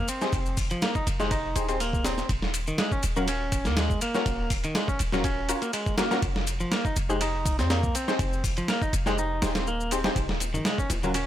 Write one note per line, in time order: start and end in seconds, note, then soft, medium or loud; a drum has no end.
0.08 0.56 C4 medium
0.08 ride medium
0.08 shaker medium
0.21 0.31 D#4 medium
0.21 0.31 G4 medium
0.21 0.31 G#4 medium
0.21 0.31 C5 medium
0.21 snare soft
0.21 shaker soft
0.33 0.75 F1 medium
0.33 kick loud
0.33 ride medium
0.33 shaker soft
0.46 shaker soft
0.57 kick medium
0.57 open hi-hat medium
0.57 shaker medium
0.70 0.81 F3 medium
0.70 ride soft
0.70 shaker soft
0.82 0.94 A#3 medium
0.82 snare loud
0.82 ride medium
0.82 shaker soft
0.95 1.06 D#4 medium
0.95 kick medium
0.95 shaker soft
1.07 1.55 F1 medium
1.07 ride medium
1.07 shaker medium
1.20 1.30 G#3 medium
1.20 1.29 D#4 medium
1.20 1.30 G4 medium
1.20 1.29 G#4 medium
1.20 1.30 C5 medium
1.20 snare soft
1.20 shaker soft
1.31 1.68 D#4 medium
1.31 kick loud
1.31 ride medium
1.31 shaker soft
1.56 2.22 D#1 loud
1.56 1.63 D#4 medium
1.56 1.63 G4 medium
1.56 1.63 G#4 medium
1.56 1.63 C5 medium
1.56 ride medium
1.56 shaker medium
1.69 1.79 C4 medium
1.69 1.75 D#4 medium
1.69 1.75 G4 medium
1.69 1.75 G#4 medium
1.69 1.75 C5 medium
1.69 ride soft
1.69 shaker soft
1.80 2.04 A#3 medium
1.80 ride medium
1.80 shaker soft
1.93 kick medium
1.93 shaker soft
2.05 2.30 C4 medium
2.05 snare loud
2.05 ride medium
2.05 shaker medium
2.18 snare soft
2.18 shaker soft
2.29 2.71 D#1 medium
2.29 kick loud
2.29 ride medium
2.29 shaker soft
2.42 snare medium
2.54 ride medium
2.54 shaker medium
2.67 2.78 D#3 medium
2.67 shaker soft
2.78 2.91 G#3 medium
2.78 snare loud
2.78 ride medium
2.78 shaker soft
2.92 3.03 C#4 medium
2.92 kick medium
2.92 shaker soft
3.03 3.67 D#1 medium
3.03 ride medium
3.03 shaker medium
3.16 3.27 F#3 medium
3.16 3.26 C#4 medium
3.16 3.26 F4 medium
3.16 3.26 F#4 medium
3.16 3.26 A#4 medium
3.16 shaker soft
3.28 3.65 C#4 medium
3.28 ride medium
3.28 shaker soft
3.52 kick medium
3.52 ride medium
3.52 shaker medium
3.65 3.95 D#2 medium
3.65 3.76 A#3 medium
3.65 snare medium
3.65 shaker soft
3.77 4.01 G#3 medium
3.77 snare loud
3.77 ride medium
3.77 shaker soft
3.90 kick medium
3.90 shaker soft
4.01 4.50 A#3 medium
4.01 ride medium
4.01 shaker medium
4.15 4.25 C#4 medium
4.15 4.25 F4 medium
4.15 4.25 F#4 medium
4.15 4.25 A#4 medium
4.15 snare soft
4.15 shaker soft
4.26 4.68 D#1 loud
4.26 kick loud
4.26 ride medium
4.26 shaker soft
4.50 kick medium
4.50 open hi-hat medium
4.50 shaker medium
4.64 4.75 D#3 medium
4.64 ride soft
4.64 shaker soft
4.75 4.87 G#3 medium
4.75 snare loud
4.75 ride medium
4.75 shaker soft
4.88 5.00 C#4 medium
4.88 kick medium
4.88 shaker soft
4.99 5.54 D#1 medium
4.99 ride medium
4.99 shaker medium
5.12 5.24 F#3 medium
5.12 5.23 C#4 medium
5.12 5.23 F4 medium
5.12 5.23 F#4 medium
5.12 5.23 A#4 medium
5.12 snare soft
5.12 shaker soft
5.24 5.61 C#4 loud
5.24 kick loud
5.24 ride medium
5.24 shaker soft
5.49 5.60 C#4 medium
5.49 5.60 F4 medium
5.49 5.60 F#4 medium
5.49 5.60 A#4 medium
5.49 ride medium
5.49 shaker medium
5.62 5.72 A#3 medium
5.62 ride soft
5.62 shaker soft
5.73 5.97 G#3 medium
5.73 ride medium
5.73 shaker soft
5.86 kick medium
5.86 shaker soft
5.98 6.23 A#3 medium
5.98 6.05 C#4 medium
5.98 6.05 F4 medium
5.98 6.05 F#4 medium
5.98 6.05 A#4 medium
5.98 snare loud
5.98 ride medium
5.98 shaker medium
6.11 6.17 C#4 loud
6.11 6.17 F4 medium
6.11 6.17 F#4 medium
6.11 6.17 A#4 loud
6.11 snare soft
6.11 shaker soft
6.22 6.65 F1 medium
6.22 kick loud
6.22 ride medium
6.22 shaker soft
6.36 snare medium
6.47 ride medium
6.47 shaker medium
6.60 6.71 F3 medium
6.60 shaker soft
6.72 6.84 A#3 medium
6.72 snare loud
6.72 ride medium
6.72 shaker soft
6.85 6.96 D#4 medium
6.85 kick medium
6.85 shaker soft
6.96 7.60 F1 medium
6.96 ride medium
6.96 shaker medium
7.10 7.20 G#3 medium
7.10 7.19 D#4 medium
7.10 7.19 G4 medium
7.10 7.19 G#4 medium
7.10 7.19 C5 medium
7.10 shaker soft
7.21 7.58 D#4 loud
7.21 ride medium
7.21 shaker soft
7.46 kick medium
7.46 ride medium
7.46 shaker medium
7.59 7.88 F2 medium
7.59 7.69 C4 medium
7.59 snare medium
7.59 shaker soft
7.70 7.94 A#3 medium
7.70 snare loud
7.70 ride medium
7.70 shaker soft
7.83 kick medium
7.83 shaker soft
7.95 8.43 C4 medium
7.95 ride medium
7.95 shaker medium
8.08 8.18 D#4 medium
8.08 8.18 G4 medium
8.08 8.18 G#4 medium
8.08 8.18 C5 medium
8.08 snare soft
8.08 shaker soft
8.19 8.61 F1 loud
8.19 kick loud
8.19 ride medium
8.19 shaker soft
8.33 shaker soft
8.44 kick medium
8.44 open hi-hat medium
8.44 shaker medium
8.57 8.68 F3 medium
8.57 ride soft
8.57 shaker soft
8.68 8.81 A#3 medium
8.68 snare loud
8.68 ride medium
8.68 shaker soft
8.82 8.93 D#4 medium
8.82 kick medium
8.82 shaker soft
8.93 9.42 F1 medium
8.93 ride medium
8.93 shaker medium
9.06 9.17 G#3 medium
9.06 9.16 D#4 medium
9.06 9.16 G4 medium
9.06 9.16 G#4 medium
9.06 9.16 C5 medium
9.06 snare soft
9.06 shaker soft
9.18 9.55 D#4 loud
9.18 shaker soft
9.42 10.09 D#1 loud
9.42 9.54 D#4 medium
9.42 9.54 G4 medium
9.42 9.54 G#4 medium
9.42 9.54 C5 medium
9.42 snare loud
9.42 ride medium
9.42 shaker medium
9.55 9.66 C4 medium
9.55 snare loud
9.55 ride medium
9.55 shaker soft
9.67 9.91 A#3 medium
9.67 shaker soft
9.80 shaker soft
9.91 10.17 C4 medium
9.91 9.99 D#4 medium
9.91 9.99 G4 medium
9.91 9.99 G#4 medium
9.91 9.99 C5 medium
9.91 ride medium
9.91 shaker medium
10.04 10.11 D#4 loud
10.04 10.11 G4 medium
10.04 10.11 G#4 medium
10.04 10.11 C5 loud
10.04 snare loud
10.04 ride medium
10.04 shaker soft
10.15 10.58 D#1 medium
10.15 kick loud
10.15 ride medium
10.15 high conga medium
10.15 shaker soft
10.29 snare medium
10.40 ride medium
10.40 high bongo medium
10.40 shaker medium
10.54 10.64 D#3 medium
10.54 high conga medium
10.54 low conga medium
10.54 shaker soft
10.65 10.78 G#3 medium
10.65 snare loud
10.65 ride medium
10.65 shaker soft
10.78 10.90 C#4 medium
10.78 kick medium
10.78 shaker soft
10.90 11.27 D#1 medium
10.90 ride medium
10.90 high bongo medium
10.90 shaker medium
11.03 11.14 F#3 medium
11.03 11.13 C#4 medium
11.03 11.13 F4 medium
11.03 11.13 F#4 medium
11.03 11.13 A#4 medium
11.03 high conga medium
11.03 shaker soft
11.14 11.27 C#4 loud
11.14 ride medium
11.14 shaker soft